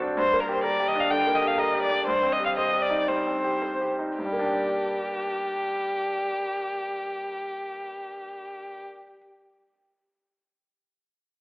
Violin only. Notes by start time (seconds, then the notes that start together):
0.18 C5
0.40 A#4
0.54 C5
0.63 D5
0.88 D#5
1.00 F5
1.10 G5
1.35 D#5
1.48 F5
1.59 D#5
1.82 D5
2.06 C5
2.32 D#5
2.45 F5
2.56 D#5
2.82 D5
3.08 C5
4.18 G4